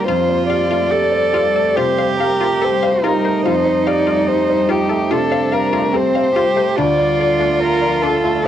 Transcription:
0.06 1.72 F2 medium
0.06 3.44 G3 medium
0.06 0.93 F4 medium
0.06 0.20 F4 medium
0.06 3.41 G4 medium
0.06 0.48 C5 medium
0.06 3.44 C5 medium
0.29 0.62 C5 soft
0.49 0.83 G4 soft
0.49 1.77 D5 medium
0.49 0.62 F5 medium
0.71 1.04 A3 soft
0.71 0.83 F4 medium
0.91 1.25 G4 soft
0.91 1.77 A4 medium
1.12 1.46 C5 soft
1.33 1.46 F4 medium
1.33 1.67 G4 soft
1.55 1.89 A3 soft
1.55 1.68 A4 medium
1.76 2.10 C3 soft
1.76 1.89 F4 medium
1.76 3.05 G4 medium
1.76 2.18 C5 medium
1.98 2.31 C5 soft
1.98 2.11 F5 medium
2.19 2.53 G4 soft
2.19 2.65 A#4 medium
2.19 2.32 F5 medium
2.41 2.74 A3 soft
2.41 2.53 F4 medium
2.62 2.95 G4 soft
2.62 2.74 A4 medium
2.62 3.05 C5 medium
2.83 3.16 C5 soft
2.83 2.95 F5 medium
3.03 5.13 D#4 medium
3.03 3.16 F4 medium
3.03 3.36 G4 soft
3.03 3.44 A#4 soft
3.25 3.58 A3 soft
3.25 3.37 C5 medium
3.45 5.07 F2 medium
3.45 6.73 G3 medium
3.45 3.58 F4 medium
3.45 6.73 G4 medium
3.45 3.88 C5 medium
3.45 6.74 C5 medium
3.65 3.99 C5 soft
3.87 4.20 G4 soft
3.87 4.29 D5 medium
3.87 3.99 F5 medium
4.07 4.40 A3 soft
4.07 4.19 F4 medium
4.28 4.61 G4 soft
4.28 4.72 C5 medium
4.50 4.82 C5 soft
4.69 4.81 F4 medium
4.69 5.12 G4 medium
4.69 5.03 G4 soft
4.89 5.23 A3 soft
4.89 5.02 A4 medium
5.11 5.44 C3 soft
5.11 5.95 D4 medium
5.11 5.23 F4 medium
5.11 5.55 A4 medium
5.31 5.64 C5 soft
5.31 5.44 F5 medium
5.52 5.85 G4 soft
5.52 5.98 A#4 medium
5.52 5.64 F5 medium
5.73 6.06 A3 soft
5.73 5.85 F4 medium
5.93 6.35 C4 medium
5.93 6.27 G4 soft
5.93 6.06 A4 medium
5.93 6.79 C5 medium
6.15 6.48 C5 soft
6.15 6.27 F5 medium
6.36 6.48 F4 medium
6.36 6.78 G4 medium
6.36 6.69 G4 soft
6.56 6.77 A3 soft
6.56 6.69 C5 medium
6.76 8.41 D2 medium
6.76 8.48 F3 medium
6.76 6.90 D4 medium
6.76 8.47 F4 medium
6.76 8.48 D5 medium
6.76 7.62 D5 medium
6.76 8.48 A5 medium
6.98 7.31 D5 soft
7.19 7.52 A4 soft
7.19 7.32 D5 medium
7.39 7.72 A3 soft
7.39 7.53 D4 medium
7.60 7.94 F4 soft
7.60 8.04 A#4 medium
7.81 8.15 D5 soft
8.02 8.16 D4 medium
8.02 8.36 A4 soft
8.02 8.47 A4 medium
8.24 8.48 A3 soft
8.24 8.37 F4 medium
8.44 8.48 A2 soft

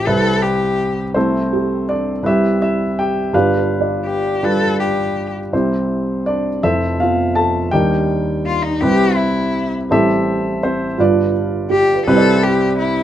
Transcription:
0.06 1.12 C2 medium
0.06 1.12 C3 medium
0.06 1.02 G3 medium
0.06 1.02 C4 medium
0.06 1.02 E4 medium
0.06 0.43 A4 loud
0.06 1.02 B4 medium
0.42 0.97 G4 medium
1.14 2.20 C2 medium
1.14 2.20 C3 medium
1.14 2.11 A3 medium
1.14 2.11 C4 medium
1.14 2.11 E4 medium
1.14 1.84 A4 medium
1.14 1.90 C5 medium
1.53 2.57 G4 medium
1.89 2.23 D4 medium
1.89 2.26 D5 medium
2.23 3.29 C2 medium
2.23 3.29 C3 medium
2.23 3.19 G3 medium
2.23 3.19 C4 medium
2.23 2.26 E4 medium
2.23 2.26 B4 medium
2.23 2.59 E5 medium
2.28 2.60 E4 medium
2.28 2.60 G4 medium
2.28 2.60 B4 medium
2.62 2.96 E4 medium
2.62 2.99 E5 medium
2.99 3.32 G4 medium
2.99 3.32 G5 medium
3.33 5.49 G1 medium
3.33 5.48 G2 medium
3.33 4.29 G3 medium
3.33 4.29 D4 medium
3.33 4.29 F4 medium
3.33 4.95 G4 medium
3.33 4.30 B4 medium
3.33 4.76 D5 medium
3.33 4.76 F5 medium
3.57 5.15 B4 soft
3.81 5.36 D5 soft
4.06 4.46 G4 medium
4.43 5.39 G3 medium
4.43 5.39 D4 medium
4.43 5.39 F4 medium
4.43 4.79 A4 loud
4.43 5.39 B4 medium
4.80 5.30 G4 medium
5.53 6.59 C2 medium
5.53 6.59 C3 medium
5.53 6.49 G3 medium
5.53 6.49 C4 medium
5.53 6.49 E4 medium
5.53 6.23 G4 medium
5.53 6.22 C5 medium
6.26 6.61 D4 medium
6.26 6.63 D5 medium
6.63 7.68 F1 medium
6.63 7.68 F2 medium
6.63 7.58 F3 medium
6.63 7.58 C4 medium
6.63 6.98 E4 medium
6.63 7.35 A4 medium
6.63 6.97 C5 medium
6.63 7.00 E5 medium
6.99 8.04 B3 soft
6.99 7.34 F4 medium
6.99 7.37 F5 medium
7.35 7.70 A4 medium
7.35 7.73 A5 medium
7.71 8.77 D#2 medium
7.71 8.77 D#3 medium
7.71 8.68 G3 medium
7.71 8.68 D4 medium
7.71 8.68 D#4 medium
7.71 9.13 G4 medium
7.71 8.77 A#4 medium
7.71 9.14 D5 medium
7.71 9.13 G5 medium
8.46 8.64 F4 medium
8.63 8.83 D#4 medium
8.81 9.86 C2 medium
8.81 9.87 C3 medium
8.81 9.77 G3 medium
8.81 9.77 C4 medium
8.81 9.77 E4 medium
8.81 9.17 G4 loud
8.81 9.77 B4 medium
9.16 9.71 E4 medium
9.89 10.95 A1 medium
9.89 10.95 A2 medium
9.89 10.85 G3 medium
9.89 10.62 C4 medium
9.89 10.86 E4 medium
9.89 10.59 G4 medium
9.89 11.30 A4 medium
9.89 10.86 A4 medium
9.89 10.59 C5 medium
9.89 10.59 E5 loud
10.63 10.97 C4 medium
10.63 11.00 C5 medium
10.98 12.04 G1 medium
10.98 12.04 G2 medium
10.98 11.94 G3 medium
10.98 11.94 D4 medium
10.98 12.39 F4 medium
10.98 11.94 F4 medium
10.98 11.94 B4 medium
10.98 13.03 D5 medium
11.70 12.39 G4 medium
11.70 12.05 G4 medium
11.94 12.60 B4 soft
12.07 13.03 C2 medium
12.07 13.03 C3 medium
12.07 13.03 G3 medium
12.07 13.03 C4 medium
12.07 13.03 E4 medium
12.07 12.45 A4 loud
12.07 13.03 B4 medium
12.17 12.81 D5 medium
12.43 12.78 G4 medium
12.79 13.03 E4 medium

